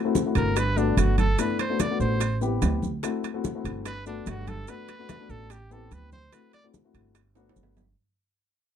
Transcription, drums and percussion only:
0.15 high bongo, high conga, maracas
0.35 high bongo, high conga, high timbale, maracas
0.56 high bongo, high conga, high timbale, maracas
0.77 high bongo, high conga, maracas
0.97 high bongo, low bongo, high conga, high timbale, maracas
1.18 high conga, high timbale, maracas
1.39 high bongo, high conga, high timbale, maracas
1.59 high bongo, high conga, high timbale, maracas
1.80 high bongo, high conga, high timbale, maracas
2.00 high bongo, high conga, maracas
2.20 high bongo, high conga, high timbale, maracas
2.41 high bongo, high conga, maracas
2.62 high bongo, low bongo, high conga, high timbale, low timbale, maracas
2.82 high conga, maracas
3.03 high bongo, high conga, high timbale, maracas
3.24 high bongo, high conga, high timbale, maracas
3.44 high bongo, high conga, maracas
3.65 high bongo, high conga, high timbale, maracas
3.85 high bongo, high conga, high timbale, maracas
4.06 high bongo, high conga, maracas
4.26 high bongo, low bongo, high conga, high timbale, low timbale, maracas
4.47 high conga, high timbale, maracas
4.68 high bongo, high conga, high timbale, maracas
4.88 high bongo, high conga, high timbale, maracas
5.09 high bongo, high conga, high timbale, maracas
5.30 high bongo, high conga, maracas
5.50 high bongo, high conga, high timbale, maracas
5.71 high bongo, high conga, maracas
5.91 high bongo, low bongo, high conga, high timbale, maracas
6.12 high conga, maracas
6.32 high bongo, high conga, high timbale, maracas
6.53 high bongo, high conga, high timbale, maracas
6.74 high bongo, high conga, maracas
6.94 high bongo, high conga, high timbale, maracas
7.15 high bongo, high conga, high timbale, maracas
7.35 high bongo, high conga, high timbale, maracas
7.49 high timbale
7.56 high bongo, low bongo, high conga, maracas
7.63 low timbale
7.77 high conga, low timbale, maracas

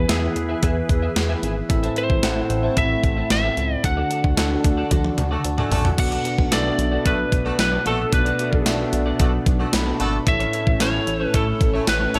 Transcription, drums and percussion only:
0.09 snare, closed hi-hat
0.36 closed hi-hat
0.63 kick, closed hi-hat
0.89 kick, closed hi-hat
1.16 snare, closed hi-hat
1.43 closed hi-hat
1.70 kick, closed hi-hat
1.84 closed hi-hat
1.96 closed hi-hat
2.10 kick
2.23 snare, closed hi-hat
2.50 closed hi-hat
2.77 kick, closed hi-hat
3.04 kick, closed hi-hat
3.30 snare, closed hi-hat
3.57 closed hi-hat
3.84 kick, closed hi-hat
4.11 closed hi-hat
4.24 kick
4.37 snare, closed hi-hat
4.64 kick, closed hi-hat
4.91 kick, closed hi-hat, high tom
5.04 high tom
5.18 closed hi-hat, mid tom
5.44 closed hi-hat
5.58 mid tom
5.72 floor tom, open hi-hat
5.85 floor tom
5.98 kick, closed hi-hat, crash
6.12 closed hi-hat
6.25 closed hi-hat
6.38 kick
6.52 snare, closed hi-hat, tambourine
6.79 closed hi-hat
7.06 kick, closed hi-hat
7.32 kick, closed hi-hat
7.59 snare, closed hi-hat, tambourine
7.86 closed hi-hat
8.13 kick, closed hi-hat
8.26 closed hi-hat
8.39 closed hi-hat
8.53 kick
8.66 snare, closed hi-hat, tambourine
8.93 closed hi-hat
9.19 kick, closed hi-hat
9.46 kick, closed hi-hat
9.73 snare, closed hi-hat, tambourine
10.00 closed hi-hat
10.27 kick, closed hi-hat
10.40 closed hi-hat
10.53 closed hi-hat
10.67 kick
10.80 snare, closed hi-hat, tambourine
11.07 closed hi-hat
11.34 kick, closed hi-hat
11.61 kick, closed hi-hat
11.87 snare, closed hi-hat, tambourine
12.14 closed hi-hat

